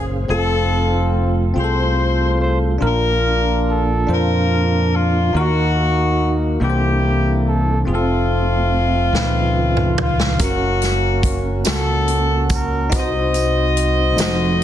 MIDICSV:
0, 0, Header, 1, 6, 480
1, 0, Start_track
1, 0, Tempo, 841515
1, 170, Time_signature, 6, 3, 24, 8
1, 8349, End_track
2, 0, Start_track
2, 0, Title_t, "Horn section"
2, 0, Program_c, 0, 61
2, 175, Note_on_c, 0, 69, 105
2, 178, Note_on_c, 0, 60, 85
2, 178, Note_on_c, 0, 65, 76
2, 630, Note_off_c, 0, 69, 0
2, 871, Note_off_c, 0, 60, 0
2, 872, Note_off_c, 0, 65, 0
2, 901, Note_on_c, 0, 65, 71
2, 902, Note_on_c, 0, 72, 84
2, 903, Note_on_c, 0, 69, 65
2, 1353, Note_off_c, 0, 72, 0
2, 1379, Note_on_c, 0, 72, 85
2, 1470, Note_off_c, 0, 72, 0
2, 1593, Note_off_c, 0, 65, 0
2, 1594, Note_off_c, 0, 69, 0
2, 1626, Note_on_c, 0, 70, 93
2, 1627, Note_on_c, 0, 65, 77
2, 1633, Note_on_c, 0, 62, 77
2, 2075, Note_off_c, 0, 70, 0
2, 2107, Note_on_c, 0, 69, 89
2, 2316, Note_off_c, 0, 65, 0
2, 2319, Note_off_c, 0, 62, 0
2, 2338, Note_off_c, 0, 69, 0
2, 2351, Note_on_c, 0, 70, 85
2, 2354, Note_on_c, 0, 65, 72
2, 2355, Note_on_c, 0, 62, 67
2, 2818, Note_off_c, 0, 65, 0
2, 2820, Note_off_c, 0, 70, 0
2, 2824, Note_on_c, 0, 65, 85
2, 3039, Note_off_c, 0, 62, 0
2, 3057, Note_off_c, 0, 65, 0
2, 3066, Note_on_c, 0, 63, 69
2, 3066, Note_on_c, 0, 66, 97
2, 3067, Note_on_c, 0, 58, 67
2, 3625, Note_off_c, 0, 66, 0
2, 3755, Note_off_c, 0, 58, 0
2, 3755, Note_off_c, 0, 63, 0
2, 3783, Note_on_c, 0, 58, 67
2, 3784, Note_on_c, 0, 64, 64
2, 3786, Note_on_c, 0, 67, 82
2, 4235, Note_off_c, 0, 67, 0
2, 4268, Note_on_c, 0, 69, 86
2, 4416, Note_off_c, 0, 58, 0
2, 4416, Note_off_c, 0, 64, 0
2, 4444, Note_off_c, 0, 69, 0
2, 4513, Note_on_c, 0, 60, 70
2, 4513, Note_on_c, 0, 65, 96
2, 4518, Note_on_c, 0, 57, 67
2, 5679, Note_off_c, 0, 65, 0
2, 5680, Note_off_c, 0, 60, 0
2, 5682, Note_off_c, 0, 57, 0
2, 5708, Note_on_c, 0, 65, 86
2, 5923, Note_off_c, 0, 65, 0
2, 5942, Note_on_c, 0, 58, 73
2, 5943, Note_on_c, 0, 61, 72
2, 5946, Note_on_c, 0, 66, 93
2, 6507, Note_off_c, 0, 66, 0
2, 6635, Note_off_c, 0, 58, 0
2, 6635, Note_off_c, 0, 61, 0
2, 6659, Note_on_c, 0, 66, 70
2, 6660, Note_on_c, 0, 61, 68
2, 6663, Note_on_c, 0, 69, 90
2, 7115, Note_off_c, 0, 69, 0
2, 7146, Note_on_c, 0, 70, 89
2, 7354, Note_off_c, 0, 61, 0
2, 7354, Note_off_c, 0, 66, 0
2, 7380, Note_off_c, 0, 70, 0
2, 7381, Note_on_c, 0, 72, 85
2, 7383, Note_on_c, 0, 66, 80
2, 7391, Note_on_c, 0, 75, 115
2, 8349, Note_off_c, 0, 66, 0
2, 8349, Note_off_c, 0, 72, 0
2, 8349, Note_off_c, 0, 75, 0
2, 8349, End_track
3, 0, Start_track
3, 0, Title_t, "Tine electric piano"
3, 0, Program_c, 1, 4
3, 0, Control_c, 1, 64, 127
3, 0, Note_on_c, 1, 58, 61
3, 0, Note_on_c, 1, 61, 52
3, 0, Note_on_c, 1, 68, 58
3, 0, Note_on_c, 1, 72, 71
3, 163, Note_on_c, 1, 60, 77
3, 172, Note_on_c, 1, 65, 69
3, 178, Note_on_c, 1, 69, 85
3, 179, Note_off_c, 1, 61, 0
3, 179, Note_off_c, 1, 72, 0
3, 179, Control_c, 1, 64, 0
3, 181, Note_off_c, 1, 58, 0
3, 183, Note_off_c, 1, 68, 0
3, 267, Control_c, 1, 64, 127
3, 667, Note_off_c, 1, 60, 0
3, 672, Note_off_c, 1, 65, 0
3, 675, Note_off_c, 1, 69, 0
3, 878, Note_on_c, 1, 60, 66
3, 888, Note_on_c, 1, 65, 60
3, 898, Note_on_c, 1, 68, 57
3, 931, Note_off_c, 1, 68, 0
3, 935, Note_on_c, 1, 69, 71
3, 1385, Note_off_c, 1, 60, 0
3, 1390, Note_off_c, 1, 65, 0
3, 1413, Note_off_c, 1, 69, 0
3, 1588, Note_on_c, 1, 62, 73
3, 1598, Note_on_c, 1, 46, 64
3, 1601, Note_on_c, 1, 65, 74
3, 1610, Note_on_c, 1, 70, 87
3, 1618, Control_c, 1, 64, 0
3, 1706, Control_c, 1, 64, 127
3, 2099, Note_off_c, 1, 62, 0
3, 2106, Note_off_c, 1, 65, 0
3, 2110, Note_off_c, 1, 70, 0
3, 2301, Note_off_c, 1, 46, 0
3, 2320, Note_on_c, 1, 62, 71
3, 2330, Note_on_c, 1, 65, 61
3, 2338, Note_on_c, 1, 72, 72
3, 2825, Note_off_c, 1, 62, 0
3, 2830, Note_off_c, 1, 65, 0
3, 2834, Note_off_c, 1, 72, 0
3, 3041, Note_on_c, 1, 63, 80
3, 3047, Note_on_c, 1, 51, 59
3, 3053, Note_on_c, 1, 65, 60
3, 3056, Control_c, 1, 64, 0
3, 3061, Note_on_c, 1, 70, 95
3, 3086, Note_on_c, 1, 66, 75
3, 3088, Note_off_c, 1, 65, 0
3, 3149, Control_c, 1, 64, 127
3, 3546, Note_off_c, 1, 63, 0
3, 3556, Note_off_c, 1, 70, 0
3, 3568, Note_off_c, 1, 66, 0
3, 3745, Note_off_c, 1, 51, 0
3, 3765, Note_on_c, 1, 58, 69
3, 3767, Note_on_c, 1, 62, 65
3, 3770, Note_on_c, 1, 48, 63
3, 3774, Note_on_c, 1, 64, 58
3, 3776, Note_on_c, 1, 69, 62
3, 3777, Control_c, 1, 64, 0
3, 3780, Note_on_c, 1, 71, 55
3, 3812, Note_off_c, 1, 71, 0
3, 3820, Note_on_c, 1, 72, 69
3, 3875, Control_c, 1, 64, 127
3, 4268, Note_off_c, 1, 58, 0
3, 4269, Note_off_c, 1, 62, 0
3, 4272, Note_off_c, 1, 64, 0
3, 4273, Note_off_c, 1, 69, 0
3, 4295, Note_off_c, 1, 72, 0
3, 4467, Note_off_c, 1, 48, 0
3, 4480, Note_on_c, 1, 60, 73
3, 4489, Note_on_c, 1, 65, 73
3, 4496, Note_on_c, 1, 68, 67
3, 4498, Control_c, 1, 64, 0
3, 4530, Note_off_c, 1, 68, 0
3, 4534, Note_on_c, 1, 69, 91
3, 4582, Control_c, 1, 64, 127
3, 4986, Note_off_c, 1, 60, 0
3, 4990, Note_off_c, 1, 65, 0
3, 5013, Note_off_c, 1, 69, 0
3, 5207, Note_on_c, 1, 46, 73
3, 5215, Note_on_c, 1, 49, 75
3, 5216, Control_c, 1, 64, 0
3, 5217, Note_on_c, 1, 63, 67
3, 5222, Note_on_c, 1, 65, 73
3, 5223, Note_on_c, 1, 71, 84
3, 5325, Control_c, 1, 64, 127
3, 5709, Note_off_c, 1, 46, 0
3, 5714, Note_off_c, 1, 63, 0
3, 5717, Note_off_c, 1, 65, 0
3, 5717, Note_off_c, 1, 71, 0
3, 5910, Note_off_c, 1, 49, 0
3, 5921, Note_on_c, 1, 61, 72
3, 5931, Note_on_c, 1, 66, 71
3, 5935, Note_on_c, 1, 70, 91
3, 5939, Control_c, 1, 64, 0
3, 6053, Control_c, 1, 64, 127
3, 6427, Note_off_c, 1, 61, 0
3, 6432, Note_off_c, 1, 66, 0
3, 6434, Note_off_c, 1, 70, 0
3, 6640, Note_on_c, 1, 61, 65
3, 6647, Note_on_c, 1, 66, 56
3, 6658, Note_on_c, 1, 58, 70
3, 7147, Note_off_c, 1, 61, 0
3, 7151, Note_off_c, 1, 66, 0
3, 7156, Note_off_c, 1, 58, 0
3, 7356, Note_on_c, 1, 63, 85
3, 7364, Note_on_c, 1, 48, 60
3, 7365, Note_on_c, 1, 66, 74
3, 7374, Note_on_c, 1, 71, 65
3, 7379, Control_c, 1, 64, 0
3, 7410, Note_off_c, 1, 71, 0
3, 7412, Note_on_c, 1, 72, 87
3, 7492, Control_c, 1, 64, 127
3, 7866, Note_off_c, 1, 63, 0
3, 7871, Note_off_c, 1, 66, 0
3, 7894, Note_off_c, 1, 72, 0
3, 8067, Note_off_c, 1, 48, 0
3, 8077, Note_on_c, 1, 57, 73
3, 8081, Note_on_c, 1, 63, 77
3, 8085, Note_on_c, 1, 53, 72
3, 8092, Note_on_c, 1, 66, 73
3, 8096, Note_on_c, 1, 72, 86
3, 8102, Control_c, 1, 64, 0
3, 8206, Control_c, 1, 64, 127
3, 8349, Note_off_c, 1, 53, 0
3, 8349, Note_off_c, 1, 57, 0
3, 8349, Note_off_c, 1, 63, 0
3, 8349, Note_off_c, 1, 66, 0
3, 8349, Note_off_c, 1, 72, 0
3, 8349, End_track
4, 0, Start_track
4, 0, Title_t, "Tonewheel organ"
4, 0, Program_c, 2, 16
4, 0, Note_on_c, 2, 58, 55
4, 0, Note_on_c, 2, 61, 52
4, 0, Note_on_c, 2, 68, 46
4, 0, Note_on_c, 2, 72, 57
4, 0, Note_on_c, 2, 77, 56
4, 147, Note_off_c, 2, 68, 0
4, 148, Note_off_c, 2, 58, 0
4, 148, Note_off_c, 2, 72, 0
4, 149, Note_off_c, 2, 61, 0
4, 152, Note_off_c, 2, 77, 0
4, 165, Note_on_c, 2, 57, 68
4, 168, Note_on_c, 2, 60, 58
4, 171, Note_on_c, 2, 65, 69
4, 1584, Note_off_c, 2, 57, 0
4, 1586, Note_off_c, 2, 60, 0
4, 1588, Note_off_c, 2, 65, 0
4, 1606, Note_on_c, 2, 58, 66
4, 1606, Note_on_c, 2, 63, 60
4, 1608, Note_on_c, 2, 62, 60
4, 1642, Note_on_c, 2, 65, 67
4, 1644, Note_off_c, 2, 63, 0
4, 3024, Note_off_c, 2, 58, 0
4, 3026, Note_off_c, 2, 62, 0
4, 3043, Note_off_c, 2, 65, 0
4, 3046, Note_on_c, 2, 63, 62
4, 3047, Note_on_c, 2, 66, 74
4, 3050, Note_on_c, 2, 58, 69
4, 3764, Note_off_c, 2, 58, 0
4, 3768, Note_off_c, 2, 63, 0
4, 3768, Note_off_c, 2, 66, 0
4, 3771, Note_on_c, 2, 58, 58
4, 3771, Note_on_c, 2, 60, 64
4, 3771, Note_on_c, 2, 62, 60
4, 3773, Note_on_c, 2, 69, 71
4, 3777, Note_on_c, 2, 52, 61
4, 4490, Note_off_c, 2, 58, 0
4, 4490, Note_off_c, 2, 60, 0
4, 4490, Note_off_c, 2, 62, 0
4, 4491, Note_off_c, 2, 69, 0
4, 4493, Note_off_c, 2, 52, 0
4, 4499, Note_on_c, 2, 54, 54
4, 4500, Note_on_c, 2, 65, 68
4, 4502, Note_on_c, 2, 60, 61
4, 4531, Note_off_c, 2, 54, 0
4, 4537, Note_on_c, 2, 57, 71
4, 5215, Note_off_c, 2, 65, 0
4, 5215, Note_on_c, 2, 53, 69
4, 5216, Note_off_c, 2, 60, 0
4, 5218, Note_on_c, 2, 51, 74
4, 5218, Note_on_c, 2, 71, 68
4, 5219, Note_on_c, 2, 49, 66
4, 5221, Note_on_c, 2, 63, 65
4, 5233, Note_off_c, 2, 57, 0
4, 5252, Note_off_c, 2, 63, 0
4, 5255, Note_on_c, 2, 65, 76
4, 5933, Note_off_c, 2, 53, 0
4, 5935, Note_off_c, 2, 49, 0
4, 5935, Note_off_c, 2, 51, 0
4, 5935, Note_off_c, 2, 71, 0
4, 5941, Note_on_c, 2, 66, 72
4, 5943, Note_on_c, 2, 58, 62
4, 5943, Note_on_c, 2, 61, 57
4, 5953, Note_off_c, 2, 65, 0
4, 7355, Note_off_c, 2, 66, 0
4, 7357, Note_off_c, 2, 58, 0
4, 7357, Note_off_c, 2, 61, 0
4, 7370, Note_on_c, 2, 63, 59
4, 7371, Note_on_c, 2, 60, 67
4, 7373, Note_on_c, 2, 66, 77
4, 8078, Note_off_c, 2, 66, 0
4, 8081, Note_off_c, 2, 63, 0
4, 8083, Note_off_c, 2, 60, 0
4, 8085, Note_on_c, 2, 66, 79
4, 8087, Note_on_c, 2, 68, 63
4, 8088, Note_on_c, 2, 63, 72
4, 8089, Note_on_c, 2, 53, 72
4, 8090, Note_on_c, 2, 60, 70
4, 8126, Note_on_c, 2, 69, 91
4, 8128, Note_off_c, 2, 68, 0
4, 8349, Note_off_c, 2, 53, 0
4, 8349, Note_off_c, 2, 60, 0
4, 8349, Note_off_c, 2, 63, 0
4, 8349, Note_off_c, 2, 66, 0
4, 8349, Note_off_c, 2, 69, 0
4, 8349, End_track
5, 0, Start_track
5, 0, Title_t, "Fingered electric bass"
5, 0, Program_c, 3, 33
5, 0, Note_on_c, 3, 30, 62
5, 151, Note_off_c, 3, 30, 0
5, 165, Note_on_c, 3, 29, 117
5, 865, Note_off_c, 3, 29, 0
5, 890, Note_on_c, 3, 36, 89
5, 1587, Note_off_c, 3, 36, 0
5, 1607, Note_on_c, 3, 34, 104
5, 2306, Note_off_c, 3, 34, 0
5, 2329, Note_on_c, 3, 41, 100
5, 3026, Note_off_c, 3, 41, 0
5, 3049, Note_on_c, 3, 39, 102
5, 3746, Note_off_c, 3, 39, 0
5, 3770, Note_on_c, 3, 36, 94
5, 4467, Note_off_c, 3, 36, 0
5, 4492, Note_on_c, 3, 29, 98
5, 5188, Note_off_c, 3, 29, 0
5, 5206, Note_on_c, 3, 37, 99
5, 5906, Note_off_c, 3, 37, 0
5, 5930, Note_on_c, 3, 30, 101
5, 6629, Note_off_c, 3, 30, 0
5, 6656, Note_on_c, 3, 37, 92
5, 7352, Note_off_c, 3, 37, 0
5, 7372, Note_on_c, 3, 36, 106
5, 8094, Note_off_c, 3, 36, 0
5, 8094, Note_on_c, 3, 29, 104
5, 8349, Note_off_c, 3, 29, 0
5, 8349, End_track
6, 0, Start_track
6, 0, Title_t, "Drums"
6, 5218, Note_on_c, 9, 38, 57
6, 5275, Note_off_c, 9, 38, 0
6, 5572, Note_on_c, 9, 45, 66
6, 5629, Note_off_c, 9, 45, 0
6, 5693, Note_on_c, 9, 43, 97
6, 5750, Note_off_c, 9, 43, 0
6, 5816, Note_on_c, 9, 38, 86
6, 5873, Note_off_c, 9, 38, 0
6, 5928, Note_on_c, 9, 42, 95
6, 5931, Note_on_c, 9, 36, 120
6, 5932, Note_on_c, 9, 54, 51
6, 5985, Note_off_c, 9, 42, 0
6, 5988, Note_off_c, 9, 36, 0
6, 5989, Note_off_c, 9, 54, 0
6, 6170, Note_on_c, 9, 42, 55
6, 6179, Note_on_c, 9, 54, 50
6, 6180, Note_on_c, 9, 38, 29
6, 6227, Note_off_c, 9, 42, 0
6, 6236, Note_off_c, 9, 54, 0
6, 6237, Note_off_c, 9, 38, 0
6, 6407, Note_on_c, 9, 36, 87
6, 6409, Note_on_c, 9, 42, 55
6, 6464, Note_off_c, 9, 36, 0
6, 6466, Note_off_c, 9, 42, 0
6, 6643, Note_on_c, 9, 54, 85
6, 6646, Note_on_c, 9, 42, 85
6, 6655, Note_on_c, 9, 38, 97
6, 6700, Note_off_c, 9, 54, 0
6, 6703, Note_off_c, 9, 42, 0
6, 6712, Note_off_c, 9, 38, 0
6, 6889, Note_on_c, 9, 42, 51
6, 6946, Note_off_c, 9, 42, 0
6, 7128, Note_on_c, 9, 42, 54
6, 7128, Note_on_c, 9, 54, 61
6, 7130, Note_on_c, 9, 36, 92
6, 7185, Note_off_c, 9, 42, 0
6, 7185, Note_off_c, 9, 54, 0
6, 7187, Note_off_c, 9, 36, 0
6, 7369, Note_on_c, 9, 42, 93
6, 7372, Note_on_c, 9, 36, 117
6, 7375, Note_on_c, 9, 54, 50
6, 7426, Note_off_c, 9, 42, 0
6, 7429, Note_off_c, 9, 36, 0
6, 7432, Note_off_c, 9, 54, 0
6, 7609, Note_on_c, 9, 42, 53
6, 7615, Note_on_c, 9, 54, 54
6, 7667, Note_off_c, 9, 42, 0
6, 7672, Note_off_c, 9, 54, 0
6, 7853, Note_on_c, 9, 42, 58
6, 7910, Note_off_c, 9, 42, 0
6, 8089, Note_on_c, 9, 54, 90
6, 8091, Note_on_c, 9, 42, 78
6, 8100, Note_on_c, 9, 38, 116
6, 8146, Note_off_c, 9, 54, 0
6, 8148, Note_off_c, 9, 42, 0
6, 8157, Note_off_c, 9, 38, 0
6, 8349, End_track
0, 0, End_of_file